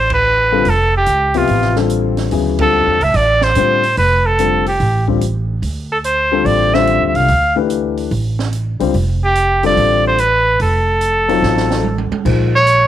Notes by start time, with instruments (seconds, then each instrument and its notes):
Already playing: upright bass A1, trumpet C5
0.10 kick, ride
0.14 trumpet B4
0.52 upright piano D3 G3 C4 F4 A4
0.65 upright bass F1, open hi-hat
0.69 trumpet A4
0.97 trumpet G4
1.06 upright bass C#2, closed hi-hat
1.34 upright piano C3 F3 B3 G4 E5, trumpet F4, open hi-hat
1.47 upright bass A1, open hi-hat
1.62 snare
1.76 upright piano D3 G3 C4 F4 A4, snare
1.90 closed hi-hat
2.17 snare, open hi-hat
2.31 upright bass D2, upright piano C#3 F#3 B3 E4 G#4, open hi-hat
2.59 upright piano D3 G3 C4 F4 A4, trumpet A4, kick, ride
2.86 upright bass E2
3.00 upright bass C#2, trumpet E5, open hi-hat
3.14 upright bass A1, trumpet D5, open hi-hat
3.41 trumpet C5, snare
3.55 upright bass A2, upright piano D3 G3 C4 F4 C5, closed hi-hat
3.83 open hi-hat
3.97 upright bass F1, trumpet B4, open hi-hat
4.26 trumpet A4
4.39 upright piano D3 G3 C4 F4 A4, closed hi-hat
4.66 trumpet G4, open hi-hat
4.80 upright bass A1, open hi-hat
5.08 upright piano D3 G3 C4 F4 G4, kick
5.21 closed hi-hat
5.62 upright bass D2, open hi-hat
5.92 trumpet A4
6.04 trumpet C5, closed hi-hat
6.32 upright piano D3 G3 C4 F4 A4
6.45 upright bass A1, trumpet D5, open hi-hat
6.73 upright piano D3 G3 C4 F4 C5, trumpet E5, snare
6.87 closed hi-hat
7.00 upright bass D2
7.06 trumpet E5
7.14 upright bass C2, trumpet F5, open hi-hat
7.28 upright bass D2, open hi-hat
7.56 upright piano E3 A3 D4 G4 B4
7.70 closed hi-hat
7.97 open hi-hat
8.11 upright bass A1, open hi-hat
8.39 snare
8.53 closed hi-hat
8.79 upright bass C#2, upright piano D3 G3 C4 F4 C5, open hi-hat
8.94 upright bass F1, open hi-hat
9.24 trumpet G4
9.35 closed hi-hat
9.63 upright piano D3 G3 C4 F4 A4, trumpet D5, open hi-hat
9.77 upright bass A1, open hi-hat
10.07 trumpet C5
10.18 trumpet B4, closed hi-hat
10.60 upright bass F1, trumpet A4, open hi-hat
11.01 closed hi-hat
11.28 upright piano F#3 C4 D#4 F4 A4, open hi-hat
11.42 upright bass A1, snare
11.57 snare
11.71 snare
11.84 high tom
11.98 high tom
12.12 muted upright bass stroke, high tom
12.25 upright bass A#1, upright piano F3 A#3 D#4 G#4 C5, kick, crash
12.55 trumpet C#5
12.67 closed hi-hat